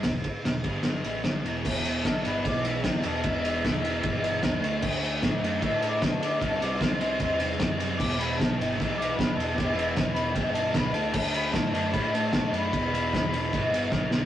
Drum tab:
CC |--------|x-------|--------|x-------|
RD |xxxxxxxx|-xxxxxxx|xxxxxxxx|-xxxxxxx|
SD |o-o-o-o-|--o---o-|--o---o-|--o---o-|
BD |oo-o----|o-o-o-o-|o-o-o-o-|o-o-o-o-|

CC |--------|x-------|--------|x-------|
RD |xxxxxxxx|-xxxxxxx|xxxxxxxx|-xxxxxxx|
SD |--o---o-|--o---o-|--o---o-|--o---o-|
BD |o-o-o-o-|o-o-o-o-|o-o-o-o-|o-o-o-o-|

CC |--------|
RD |xxxxxx--|
SD |--o---oo|
BD |o-o-o-o-|